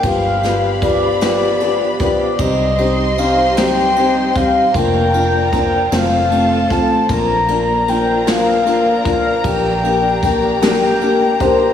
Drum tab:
RD |xxxxxx|xxxxxx|xxxxxx|xxxxxx|
SD |-o-o--|---o--|---o--|---o--|
BD |o-o--o|o----o|o-o--o|o----o|

RD |xxxxxx|
SD |---o--|
BD |o-o--o|